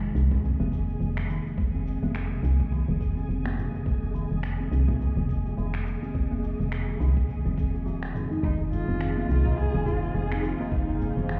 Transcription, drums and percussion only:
0.04 cabasa
0.16 cabasa
0.31 kick, mid tom, cabasa
0.45 cabasa
0.61 cabasa
0.72 kick, cabasa
0.90 cabasa
1.02 cabasa
1.17 finger snap, cabasa
1.30 cabasa
1.46 cabasa
1.58 kick, cabasa
1.75 cabasa
1.87 cabasa
2.04 cabasa
2.15 finger snap, cabasa
2.32 cabasa
2.44 cabasa
2.60 kick, cabasa
2.72 kick, cabasa
2.90 cabasa
3.01 kick, cabasa
3.18 cabasa
3.30 cabasa
3.46 finger snap, cabasa
3.58 mid tom, cabasa
3.75 cabasa
3.86 kick, cabasa
4.04 cabasa
4.15 cabasa
4.32 cabasa
4.43 finger snap, cabasa
4.61 cabasa
4.73 cabasa
4.88 kick, mid tom, cabasa
5.01 cabasa
5.18 cabasa
5.29 kick, cabasa
5.46 cabasa
5.58 cabasa
5.74 finger snap, cabasa
5.87 cabasa
6.03 cabasa
6.15 kick, cabasa
6.32 cabasa
6.44 cabasa
6.61 cabasa
6.72 finger snap, cabasa
6.89 cabasa
7.01 cabasa
7.17 kick, cabasa
7.29 kick, cabasa
7.46 cabasa
7.58 kick, cabasa
7.75 cabasa
7.87 cabasa
8.03 finger snap, cabasa
8.15 mid tom, cabasa
8.32 cabasa
8.43 kick, cabasa
8.61 cabasa
8.72 tabla ge, cabasa
8.89 cabasa
9.01 finger snap, cabasa
9.17 tabla na, cabasa
9.30 cabasa
9.45 kick, mid tom, tabla na, tabla tin, cabasa
9.59 cabasa
9.75 cabasa
9.85 kick, tabla na, tabla ge, cabasa
10.03 tabla tin, cabasa
10.16 cabasa
10.32 finger snap, cabasa
10.44 cabasa
10.60 tabla na, cabasa
10.72 kick, cabasa
10.89 cabasa
11.00 tabla ge, cabasa
11.18 cabasa
11.29 finger snap, cabasa

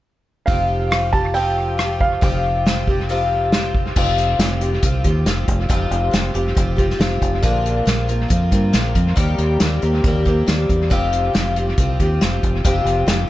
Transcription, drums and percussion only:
0.48 kick, open hi-hat
0.92 cross-stick, open hi-hat
1.13 kick
1.35 open hi-hat
1.79 cross-stick, open hi-hat
2.00 kick
2.22 kick, open hi-hat
2.66 snare, open hi-hat
2.88 kick
3.09 open hi-hat
3.52 snare, open hi-hat
3.75 kick
3.96 kick, crash
4.18 closed hi-hat
4.40 snare, closed hi-hat
4.61 closed hi-hat
4.83 kick, closed hi-hat
5.04 kick, closed hi-hat
5.26 snare, closed hi-hat
5.48 kick, closed hi-hat
5.70 kick, closed hi-hat
5.91 closed hi-hat
6.13 snare, closed hi-hat
6.35 closed hi-hat
6.57 kick, closed hi-hat
6.78 kick, closed hi-hat
6.90 snare
7.00 snare, closed hi-hat
7.22 kick, closed hi-hat
7.43 kick, closed hi-hat
7.66 closed hi-hat
7.87 snare, closed hi-hat
8.09 closed hi-hat
8.30 kick, closed hi-hat
8.52 kick, closed hi-hat
8.73 snare, closed hi-hat
8.95 kick, closed hi-hat
9.17 kick, closed hi-hat
9.38 closed hi-hat
9.60 snare, closed hi-hat
9.82 closed hi-hat
10.04 kick, closed hi-hat
10.25 kick, closed hi-hat
10.48 snare, closed hi-hat
10.69 kick, closed hi-hat
10.91 kick, closed hi-hat
11.13 closed hi-hat
11.35 snare, closed hi-hat
11.56 closed hi-hat
11.78 kick, closed hi-hat
12.00 kick, closed hi-hat
12.21 snare, closed hi-hat
12.43 kick, closed hi-hat
12.65 kick, closed hi-hat
12.86 closed hi-hat
13.08 snare, closed hi-hat

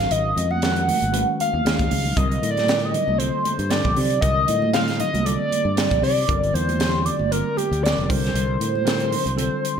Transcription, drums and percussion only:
0.11 closed hi-hat
0.36 closed hi-hat, low conga
0.51 high conga
0.62 snare, closed hi-hat
0.76 closed hi-hat
0.89 open hi-hat, high conga, low conga
1.02 closed hi-hat, high conga
1.14 closed hi-hat
1.40 closed hi-hat, high conga
1.54 high conga
1.66 snare, closed hi-hat, high conga
1.79 kick, closed hi-hat, high conga
1.91 open hi-hat, low conga
2.05 low conga
2.17 kick, closed hi-hat
2.31 closed hi-hat
2.42 closed hi-hat, low conga
2.57 snare, closed hi-hat, high conga
2.68 snare, closed hi-hat
2.94 closed hi-hat, low conga
3.08 high conga
3.20 closed hi-hat
3.45 closed hi-hat, high conga
3.59 closed hi-hat
3.71 snare, closed hi-hat, low conga
3.85 kick
3.96 open hi-hat, low conga
4.11 closed hi-hat
4.22 kick, closed hi-hat
4.48 closed hi-hat, low conga
4.62 high conga
4.74 snare, closed hi-hat
4.88 snare, closed hi-hat
5.00 closed hi-hat, low conga
5.14 closed hi-hat, high conga
5.26 closed hi-hat
5.51 closed hi-hat, high conga
5.77 snare, closed hi-hat, low conga
5.91 kick, closed hi-hat
6.03 open hi-hat, low conga
6.29 kick, closed hi-hat
6.43 closed hi-hat
6.55 closed hi-hat, low conga
6.68 closed hi-hat, high conga
6.80 snare, closed hi-hat
7.06 closed hi-hat, low conga
7.19 high conga
7.32 closed hi-hat
7.57 closed hi-hat, high conga
7.73 closed hi-hat
7.84 snare, closed hi-hat, low conga
8.10 kick, open hi-hat, low conga
8.24 snare, closed hi-hat
8.35 closed hi-hat
8.61 closed hi-hat
8.75 high conga
8.87 snare, closed hi-hat
9.00 closed hi-hat
9.12 open hi-hat, low conga
9.27 closed hi-hat
9.38 closed hi-hat
9.65 closed hi-hat

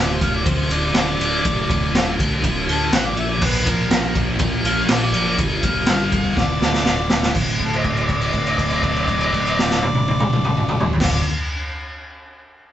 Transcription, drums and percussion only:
0.21 kick, ride
0.46 kick, ride
0.70 ride
0.94 snare, ride
1.21 ride
1.45 kick, ride
1.70 kick, ride
1.95 snare, ride
2.19 kick, ride
2.44 kick, ride
2.69 ride
2.92 snare, ride
3.17 ride
3.41 kick, crash
3.66 kick, ride
3.91 snare, ride
4.15 kick, ride
4.39 kick, ride
4.65 ride
4.88 snare, ride
5.13 ride
5.38 kick, ride
5.63 kick, ride
5.86 snare, ride
6.12 kick, ride
6.37 kick, snare
6.62 snare
6.74 snare
6.85 snare
7.09 snare
7.22 snare
7.35 kick, crash
7.60 kick, crash
7.73 crash
7.84 kick, crash
7.97 crash
8.09 kick, crash
8.21 crash
8.33 kick, crash
8.46 crash
8.58 kick, crash
8.70 crash
8.83 kick, crash
8.96 crash
9.08 kick, crash
9.20 crash
9.33 kick, crash
9.47 crash
9.59 snare
9.71 snare
9.82 high tom
9.94 high tom
10.08 high tom
10.20 mid tom
10.33 mid tom
10.45 mid tom
10.56 mid tom
10.68 mid tom
10.80 floor tom
10.93 floor tom
11.00 kick, snare, crash

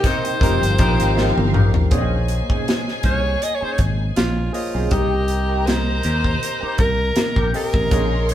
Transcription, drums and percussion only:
0.04 kick, closed hi-hat
0.25 closed hi-hat
0.41 kick, closed hi-hat
0.63 closed hi-hat
0.79 kick, closed hi-hat
1.00 closed hi-hat
1.18 snare
1.38 high tom
1.54 mid tom
1.74 floor tom
1.91 kick, closed hi-hat
2.28 closed hi-hat
2.50 kick
2.68 snare, closed hi-hat
2.88 snare
3.03 kick, closed hi-hat
3.42 closed hi-hat
3.78 kick, closed hi-hat
4.16 snare, closed hi-hat
4.54 open hi-hat
4.91 kick, closed hi-hat
5.28 closed hi-hat
5.67 snare, closed hi-hat
6.03 closed hi-hat
6.24 kick
6.43 closed hi-hat
6.78 kick, closed hi-hat
7.16 snare, closed hi-hat
7.36 kick
7.54 open hi-hat
7.74 kick
7.91 kick, closed hi-hat
8.29 closed hi-hat

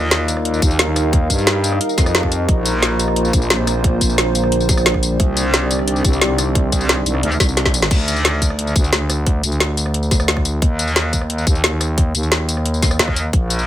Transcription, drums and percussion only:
0.11 snare, closed hi-hat
0.28 closed hi-hat, tambourine
0.37 cross-stick
0.45 closed hi-hat
0.54 tambourine
0.62 kick, closed hi-hat, tambourine
0.71 tambourine
0.79 snare, closed hi-hat
0.96 cross-stick, closed hi-hat, tambourine
1.13 kick, closed hi-hat
1.30 kick, closed hi-hat, tambourine
1.38 tambourine
1.47 snare, closed hi-hat
1.64 closed hi-hat, tambourine
1.72 cross-stick
1.81 closed hi-hat
1.89 tambourine
1.98 kick, snare, closed hi-hat, tambourine
2.06 cross-stick, tambourine
2.15 snare, closed hi-hat
2.23 kick, cross-stick
2.32 closed hi-hat, tambourine
2.49 kick, closed hi-hat
2.66 closed hi-hat, tambourine
2.83 snare, closed hi-hat
2.99 closed hi-hat, tambourine
3.08 cross-stick
3.16 closed hi-hat
3.25 tambourine
3.33 kick, closed hi-hat, tambourine
3.42 tambourine
3.50 snare, closed hi-hat
3.67 cross-stick, closed hi-hat, tambourine
3.84 kick, closed hi-hat
4.01 kick, closed hi-hat, tambourine
4.10 tambourine
4.18 snare, closed hi-hat
4.35 closed hi-hat, tambourine
4.43 cross-stick
4.52 closed hi-hat
4.60 tambourine
4.69 kick, snare, closed hi-hat, tambourine
4.77 cross-stick, tambourine
4.86 snare, closed hi-hat
4.94 kick, cross-stick
5.03 closed hi-hat, tambourine
5.20 kick, closed hi-hat
5.37 closed hi-hat, tambourine
5.54 snare, closed hi-hat
5.71 closed hi-hat, tambourine
5.79 cross-stick
5.88 closed hi-hat
5.96 tambourine
6.04 kick, closed hi-hat, tambourine
6.13 tambourine
6.21 snare, closed hi-hat
6.38 cross-stick, closed hi-hat, tambourine
6.55 kick, closed hi-hat
6.72 kick, closed hi-hat, tambourine
6.81 tambourine
6.89 snare, closed hi-hat
7.06 closed hi-hat, tambourine
7.15 cross-stick
7.23 closed hi-hat
7.32 tambourine
7.40 kick, snare, closed hi-hat, tambourine
7.49 tambourine
7.57 snare, closed hi-hat
7.65 kick, snare
7.74 closed hi-hat, tambourine
7.82 snare
7.91 kick, closed hi-hat, crash
8.08 closed hi-hat, tambourine
8.16 tambourine
8.25 snare, closed hi-hat
8.42 kick, closed hi-hat, tambourine
8.50 cross-stick
8.59 closed hi-hat
8.67 tambourine
8.76 kick, closed hi-hat, tambourine
8.84 tambourine
8.93 snare, closed hi-hat
9.10 cross-stick, closed hi-hat, tambourine
9.26 kick, closed hi-hat
9.43 closed hi-hat, tambourine
9.52 tambourine
9.60 snare, closed hi-hat
9.77 closed hi-hat, tambourine
9.86 cross-stick
9.94 closed hi-hat
10.03 tambourine
10.11 kick, snare, closed hi-hat, tambourine
10.20 cross-stick, tambourine
10.28 snare, closed hi-hat
10.37 kick, cross-stick
10.45 closed hi-hat, tambourine
10.62 kick, closed hi-hat
10.79 closed hi-hat, tambourine
10.88 tambourine
10.96 snare, closed hi-hat
11.13 kick, closed hi-hat, tambourine
11.21 cross-stick
11.30 closed hi-hat
11.38 tambourine
11.47 kick, closed hi-hat, tambourine
11.55 tambourine
11.64 snare, closed hi-hat
11.81 cross-stick, closed hi-hat, tambourine
11.98 kick, closed hi-hat
12.15 closed hi-hat, tambourine
12.23 tambourine
12.32 snare, closed hi-hat
12.49 closed hi-hat, tambourine
12.57 cross-stick
12.66 closed hi-hat
12.74 tambourine
12.82 kick, snare, closed hi-hat, tambourine
12.91 cross-stick, tambourine
12.99 snare, closed hi-hat
13.08 kick, cross-stick
13.16 closed hi-hat, tambourine
13.33 kick, closed hi-hat
13.50 closed hi-hat, tambourine
13.59 tambourine

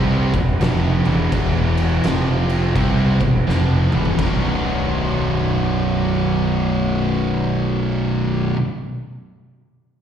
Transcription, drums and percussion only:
0.34 kick, crash
0.61 snare, crash
1.05 crash
1.32 kick, crash
1.77 crash
2.04 snare, crash
2.49 crash
2.76 kick, crash
3.20 kick, crash
3.49 snare
3.92 mid tom
4.05 floor tom
4.19 kick, crash

